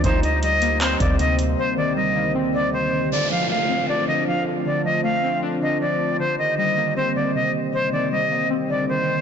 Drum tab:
HH |xxxxxxxx|--------|--------|--------|
CP |----x---|--------|--------|--------|
BD |o----o--|--------|--------|--------|

HH |--------|--------|
CP |--------|--------|
BD |--------|--------|